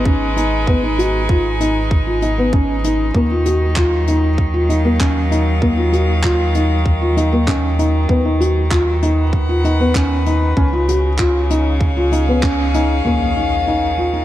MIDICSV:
0, 0, Header, 1, 6, 480
1, 0, Start_track
1, 0, Key_signature, -6, "minor"
1, 0, Tempo, 618557
1, 526, Time_signature, 4, 2, 24, 8
1, 11057, End_track
2, 0, Start_track
2, 0, Title_t, "Felt piano"
2, 0, Program_c, 0, 0
2, 49, Note_on_c, 0, 61, 76
2, 204, Note_off_c, 0, 61, 0
2, 283, Note_on_c, 0, 63, 72
2, 440, Note_off_c, 0, 63, 0
2, 526, Note_on_c, 0, 59, 88
2, 604, Note_off_c, 0, 59, 0
2, 646, Note_on_c, 0, 63, 70
2, 724, Note_off_c, 0, 63, 0
2, 766, Note_on_c, 0, 66, 75
2, 922, Note_off_c, 0, 66, 0
2, 1007, Note_on_c, 0, 65, 78
2, 1162, Note_off_c, 0, 65, 0
2, 1245, Note_on_c, 0, 63, 75
2, 1401, Note_off_c, 0, 63, 0
2, 1604, Note_on_c, 0, 65, 61
2, 1683, Note_off_c, 0, 65, 0
2, 1725, Note_on_c, 0, 63, 71
2, 1804, Note_off_c, 0, 63, 0
2, 1848, Note_on_c, 0, 59, 72
2, 1925, Note_off_c, 0, 59, 0
2, 1968, Note_on_c, 0, 61, 76
2, 2123, Note_off_c, 0, 61, 0
2, 2207, Note_on_c, 0, 63, 70
2, 2363, Note_off_c, 0, 63, 0
2, 2449, Note_on_c, 0, 58, 86
2, 2526, Note_off_c, 0, 58, 0
2, 2570, Note_on_c, 0, 65, 69
2, 2647, Note_off_c, 0, 65, 0
2, 2684, Note_on_c, 0, 66, 73
2, 2841, Note_off_c, 0, 66, 0
2, 2930, Note_on_c, 0, 65, 87
2, 3085, Note_off_c, 0, 65, 0
2, 3168, Note_on_c, 0, 63, 69
2, 3323, Note_off_c, 0, 63, 0
2, 3521, Note_on_c, 0, 65, 66
2, 3600, Note_off_c, 0, 65, 0
2, 3642, Note_on_c, 0, 63, 71
2, 3721, Note_off_c, 0, 63, 0
2, 3762, Note_on_c, 0, 58, 71
2, 3841, Note_off_c, 0, 58, 0
2, 3882, Note_on_c, 0, 61, 76
2, 4039, Note_off_c, 0, 61, 0
2, 4122, Note_on_c, 0, 63, 75
2, 4279, Note_off_c, 0, 63, 0
2, 4359, Note_on_c, 0, 58, 88
2, 4439, Note_off_c, 0, 58, 0
2, 4479, Note_on_c, 0, 65, 71
2, 4559, Note_off_c, 0, 65, 0
2, 4598, Note_on_c, 0, 66, 71
2, 4757, Note_off_c, 0, 66, 0
2, 4842, Note_on_c, 0, 65, 84
2, 4999, Note_off_c, 0, 65, 0
2, 5082, Note_on_c, 0, 63, 69
2, 5239, Note_off_c, 0, 63, 0
2, 5444, Note_on_c, 0, 65, 65
2, 5522, Note_off_c, 0, 65, 0
2, 5564, Note_on_c, 0, 63, 77
2, 5642, Note_off_c, 0, 63, 0
2, 5685, Note_on_c, 0, 58, 75
2, 5763, Note_off_c, 0, 58, 0
2, 5803, Note_on_c, 0, 61, 77
2, 5960, Note_off_c, 0, 61, 0
2, 6045, Note_on_c, 0, 63, 76
2, 6201, Note_off_c, 0, 63, 0
2, 6280, Note_on_c, 0, 59, 89
2, 6360, Note_off_c, 0, 59, 0
2, 6403, Note_on_c, 0, 63, 67
2, 6482, Note_off_c, 0, 63, 0
2, 6522, Note_on_c, 0, 66, 73
2, 6679, Note_off_c, 0, 66, 0
2, 6763, Note_on_c, 0, 65, 86
2, 6920, Note_off_c, 0, 65, 0
2, 7005, Note_on_c, 0, 63, 75
2, 7161, Note_off_c, 0, 63, 0
2, 7365, Note_on_c, 0, 65, 64
2, 7443, Note_off_c, 0, 65, 0
2, 7485, Note_on_c, 0, 63, 76
2, 7563, Note_off_c, 0, 63, 0
2, 7605, Note_on_c, 0, 59, 76
2, 7683, Note_off_c, 0, 59, 0
2, 7725, Note_on_c, 0, 61, 83
2, 7881, Note_off_c, 0, 61, 0
2, 7966, Note_on_c, 0, 63, 73
2, 8122, Note_off_c, 0, 63, 0
2, 8205, Note_on_c, 0, 61, 94
2, 8283, Note_off_c, 0, 61, 0
2, 8327, Note_on_c, 0, 65, 69
2, 8405, Note_off_c, 0, 65, 0
2, 8448, Note_on_c, 0, 66, 75
2, 8603, Note_off_c, 0, 66, 0
2, 8687, Note_on_c, 0, 65, 87
2, 8842, Note_off_c, 0, 65, 0
2, 8928, Note_on_c, 0, 63, 75
2, 9083, Note_off_c, 0, 63, 0
2, 9287, Note_on_c, 0, 65, 71
2, 9365, Note_off_c, 0, 65, 0
2, 9405, Note_on_c, 0, 63, 71
2, 9483, Note_off_c, 0, 63, 0
2, 9530, Note_on_c, 0, 59, 76
2, 9607, Note_off_c, 0, 59, 0
2, 9648, Note_on_c, 0, 61, 83
2, 9803, Note_off_c, 0, 61, 0
2, 9891, Note_on_c, 0, 63, 80
2, 10045, Note_off_c, 0, 63, 0
2, 10129, Note_on_c, 0, 58, 69
2, 10284, Note_off_c, 0, 58, 0
2, 10370, Note_on_c, 0, 63, 59
2, 10525, Note_off_c, 0, 63, 0
2, 10612, Note_on_c, 0, 63, 66
2, 10766, Note_off_c, 0, 63, 0
2, 10848, Note_on_c, 0, 65, 59
2, 10925, Note_off_c, 0, 65, 0
2, 10968, Note_on_c, 0, 63, 51
2, 11045, Note_off_c, 0, 63, 0
2, 11057, End_track
3, 0, Start_track
3, 0, Title_t, "String quartet"
3, 0, Program_c, 1, 48
3, 0, Note_on_c, 1, 56, 81
3, 0, Note_on_c, 1, 63, 80
3, 0, Note_on_c, 1, 71, 62
3, 0, Note_on_c, 1, 80, 70
3, 2444, Note_off_c, 1, 71, 0
3, 2446, Note_on_c, 1, 51, 71
3, 2449, Note_off_c, 1, 56, 0
3, 2449, Note_off_c, 1, 80, 0
3, 2837, Note_on_c, 1, 54, 80
3, 3558, Note_on_c, 1, 77, 67
3, 6286, Note_off_c, 1, 77, 0
3, 7053, Note_off_c, 1, 54, 0
3, 7139, Note_on_c, 1, 78, 75
3, 7140, Note_on_c, 1, 71, 73
3, 8201, Note_off_c, 1, 78, 0
3, 8206, Note_off_c, 1, 51, 0
3, 8208, Note_on_c, 1, 49, 77
3, 8822, Note_on_c, 1, 61, 84
3, 8969, Note_off_c, 1, 71, 0
3, 8972, Note_off_c, 1, 63, 0
3, 9070, Note_on_c, 1, 68, 70
3, 9070, Note_on_c, 1, 77, 79
3, 10127, Note_off_c, 1, 49, 0
3, 10131, Note_on_c, 1, 51, 58
3, 10445, Note_on_c, 1, 63, 57
3, 11057, Note_off_c, 1, 51, 0
3, 11057, Note_off_c, 1, 61, 0
3, 11057, Note_off_c, 1, 63, 0
3, 11057, Note_off_c, 1, 68, 0
3, 11057, Note_off_c, 1, 77, 0
3, 11057, End_track
4, 0, Start_track
4, 0, Title_t, "Analog synth bass"
4, 0, Program_c, 2, 38
4, 0, Note_on_c, 2, 32, 81
4, 2421, Note_off_c, 2, 32, 0
4, 2441, Note_on_c, 2, 39, 84
4, 6260, Note_off_c, 2, 39, 0
4, 6278, Note_on_c, 2, 39, 86
4, 8178, Note_off_c, 2, 39, 0
4, 8201, Note_on_c, 2, 37, 85
4, 10100, Note_off_c, 2, 37, 0
4, 10127, Note_on_c, 2, 39, 75
4, 11057, Note_off_c, 2, 39, 0
4, 11057, End_track
5, 0, Start_track
5, 0, Title_t, "Impact"
5, 0, Program_c, 3, 103
5, 10125, Note_on_c, 3, 60, 56
5, 11057, Note_off_c, 3, 60, 0
5, 11057, End_track
6, 0, Start_track
6, 0, Title_t, "Drums"
6, 42, Note_on_c, 9, 36, 103
6, 120, Note_off_c, 9, 36, 0
6, 287, Note_on_c, 9, 42, 62
6, 365, Note_off_c, 9, 42, 0
6, 523, Note_on_c, 9, 36, 97
6, 600, Note_off_c, 9, 36, 0
6, 770, Note_on_c, 9, 42, 63
6, 847, Note_off_c, 9, 42, 0
6, 1002, Note_on_c, 9, 36, 96
6, 1080, Note_off_c, 9, 36, 0
6, 1246, Note_on_c, 9, 42, 72
6, 1323, Note_off_c, 9, 42, 0
6, 1482, Note_on_c, 9, 36, 99
6, 1560, Note_off_c, 9, 36, 0
6, 1723, Note_on_c, 9, 42, 59
6, 1800, Note_off_c, 9, 42, 0
6, 1963, Note_on_c, 9, 36, 107
6, 2040, Note_off_c, 9, 36, 0
6, 2205, Note_on_c, 9, 42, 67
6, 2283, Note_off_c, 9, 42, 0
6, 2441, Note_on_c, 9, 36, 91
6, 2518, Note_off_c, 9, 36, 0
6, 2681, Note_on_c, 9, 42, 72
6, 2759, Note_off_c, 9, 42, 0
6, 2918, Note_on_c, 9, 39, 83
6, 2921, Note_on_c, 9, 36, 93
6, 2996, Note_off_c, 9, 39, 0
6, 2998, Note_off_c, 9, 36, 0
6, 3162, Note_on_c, 9, 42, 70
6, 3240, Note_off_c, 9, 42, 0
6, 3400, Note_on_c, 9, 36, 102
6, 3477, Note_off_c, 9, 36, 0
6, 3645, Note_on_c, 9, 42, 64
6, 3723, Note_off_c, 9, 42, 0
6, 3880, Note_on_c, 9, 36, 99
6, 3884, Note_on_c, 9, 39, 82
6, 3958, Note_off_c, 9, 36, 0
6, 3962, Note_off_c, 9, 39, 0
6, 4127, Note_on_c, 9, 42, 69
6, 4205, Note_off_c, 9, 42, 0
6, 4361, Note_on_c, 9, 36, 88
6, 4438, Note_off_c, 9, 36, 0
6, 4604, Note_on_c, 9, 42, 66
6, 4682, Note_off_c, 9, 42, 0
6, 4838, Note_on_c, 9, 39, 82
6, 4840, Note_on_c, 9, 36, 91
6, 4916, Note_off_c, 9, 39, 0
6, 4917, Note_off_c, 9, 36, 0
6, 5080, Note_on_c, 9, 42, 65
6, 5157, Note_off_c, 9, 42, 0
6, 5320, Note_on_c, 9, 36, 88
6, 5398, Note_off_c, 9, 36, 0
6, 5565, Note_on_c, 9, 42, 64
6, 5643, Note_off_c, 9, 42, 0
6, 5799, Note_on_c, 9, 36, 103
6, 5804, Note_on_c, 9, 39, 87
6, 5877, Note_off_c, 9, 36, 0
6, 5882, Note_off_c, 9, 39, 0
6, 6044, Note_on_c, 9, 42, 60
6, 6122, Note_off_c, 9, 42, 0
6, 6279, Note_on_c, 9, 36, 89
6, 6356, Note_off_c, 9, 36, 0
6, 6528, Note_on_c, 9, 42, 69
6, 6606, Note_off_c, 9, 42, 0
6, 6759, Note_on_c, 9, 36, 89
6, 6762, Note_on_c, 9, 39, 89
6, 6836, Note_off_c, 9, 36, 0
6, 6840, Note_off_c, 9, 39, 0
6, 7003, Note_on_c, 9, 42, 65
6, 7081, Note_off_c, 9, 42, 0
6, 7239, Note_on_c, 9, 36, 89
6, 7317, Note_off_c, 9, 36, 0
6, 7486, Note_on_c, 9, 42, 56
6, 7563, Note_off_c, 9, 42, 0
6, 7720, Note_on_c, 9, 36, 100
6, 7723, Note_on_c, 9, 39, 93
6, 7798, Note_off_c, 9, 36, 0
6, 7801, Note_off_c, 9, 39, 0
6, 7962, Note_on_c, 9, 42, 65
6, 8040, Note_off_c, 9, 42, 0
6, 8201, Note_on_c, 9, 36, 94
6, 8278, Note_off_c, 9, 36, 0
6, 8447, Note_on_c, 9, 42, 69
6, 8525, Note_off_c, 9, 42, 0
6, 8679, Note_on_c, 9, 39, 78
6, 8680, Note_on_c, 9, 36, 91
6, 8757, Note_off_c, 9, 39, 0
6, 8758, Note_off_c, 9, 36, 0
6, 8927, Note_on_c, 9, 42, 71
6, 9005, Note_off_c, 9, 42, 0
6, 9161, Note_on_c, 9, 36, 96
6, 9239, Note_off_c, 9, 36, 0
6, 9407, Note_on_c, 9, 42, 67
6, 9485, Note_off_c, 9, 42, 0
6, 9643, Note_on_c, 9, 36, 98
6, 9646, Note_on_c, 9, 39, 81
6, 9720, Note_off_c, 9, 36, 0
6, 9724, Note_off_c, 9, 39, 0
6, 9887, Note_on_c, 9, 42, 62
6, 9964, Note_off_c, 9, 42, 0
6, 11057, End_track
0, 0, End_of_file